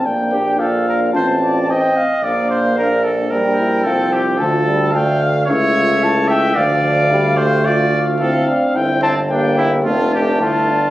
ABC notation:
X:1
M:4/4
L:1/8
Q:1/4=110
K:Bblyd
V:1 name="Cornet"
g2 f2 a2 g f | f3 z g4 | [K:Dm] a2 g f e2 a g | f4 f4 |
g a g z a2 a2 |]
V:2 name="Trumpet"
z G A B c d _e2 | d c B A B2 A G | [K:Dm] A2 f2 ^c3 e | d3 c d z A z |
z C D E F G F2 |]
V:3 name="French horn"
D2 F2 F2 C z | D4 D E F2 | [K:Dm] F2 D2 E F E2 | D2 G2 F F E D |
E z G2 D2 E D |]
V:4 name="Euphonium"
B, D D2 C2 C z | B,2 B,2 G,2 F,2 | [K:Dm] F, G, A,2 A,4 | F,2 G, A,3 C2- |
C z B,2 A,4 |]
V:5 name="Tuba" clef=bass
B,,,4 A,,,3 z | B,,,6 C,,2 | [K:Dm] D,,4 ^C,,4 | D,,6- D,, z |
G,,,4 F,,,2 G,,,2 |]